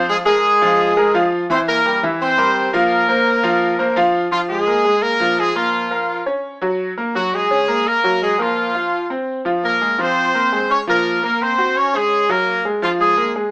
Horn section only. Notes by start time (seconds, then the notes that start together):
0.09 G#3 G#4
0.26 G#3 G#4
1.50 C4 C5
1.68 A#3 A#4
2.21 C4 C5
2.73 A#3 A#4
4.32 F3 F4
4.49 G#3 G#4
5.02 A#3 A#4
5.38 G#3 G#4
5.57 F3 F4
7.15 F#3 F#4
7.34 G#3 G#4
7.88 A#3 A#4
8.22 G#3 G#4
8.39 F3 F4
9.64 A#3 A#4
9.99 C4 C5
10.71 C#4 C#5
10.89 A#3 A#4
11.25 A#3 A#4
11.42 C4 C5
11.77 C#4 C#5
11.95 G#3 G#4
12.30 A#3 A#4
12.83 F3 F4
13.00 G#3 G#4